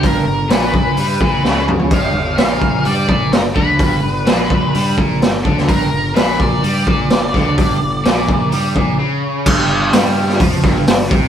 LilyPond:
<<
  \new Staff \with { instrumentName = "Lead electric guitar" } { \time 4/4 \key c \major \tempo 4 = 127 bes'4 b'2~ b'8 r8 | f''4 f''4 d''8 d''8 bes'8 b'8~ | b'2~ b'8 r4. | bes'4 b'8 d''2~ d''8~ |
d''2. r4 | r1 | }
  \new Staff \with { instrumentName = "Overdriven electric guitar" } { \clef bass \time 4/4 \key c \major g,8 g,8 bes,4 g8 bes,8 cis4 | g,8 g,8 bes,4 g8 bes,8 g,8 d8 | g,8 g,8 bes,4 g8 bes,8 g,8 d8 | g,8 g,8 bes,4 g8 bes,8 g,8 d8 |
g,8 g,8 bes,4 g8 bes,8 cis4 | g,4 g4 f8 g,8 g,8 c8 | }
  \new Staff \with { instrumentName = "Fingered electric bass" } { \clef bass \time 4/4 \key c \major g,,8 g,,8 bes,,4 g,8 bes,,8 cis,4 | g,,8 g,,8 bes,,4 g,8 bes,,8 g,,8 d,8 | g,,8 g,,8 bes,,4 g,8 bes,,8 g,,8 d,8 | g,,8 g,,8 bes,,4 g,8 bes,,8 g,,8 d,8 |
g,,8 g,,8 bes,,4 g,8 bes,,8 r4 | g,,4 g,4 f,8 g,,8 g,,8 c,8 | }
  \new DrumStaff \with { instrumentName = "Drums" } \drummode { \time 4/4 <hho bd>4 <hho sn>8 bd8 hho8 bd8 sn8 toml16 tomfh16 | <cymc hho bd>4 <hho sn>8 bd8 hho8 bd8 <hho sn>8 bd8 | <hho bd>4 <hho sn>8 bd8 hho8 bd8 <hho sn>8 bd16 sn16 | <hho bd>4 <hho sn>8 bd8 hho8 bd8 <hho sn>8 <bd sn>8 |
<hho bd>4 <hho sn>8 bd8 hho8 bd8 r4 | <cymc bd>4 <hho sn>8. sn16 <hho bd>8 <bd sn>8 <hho sn>8 bd8 | }
>>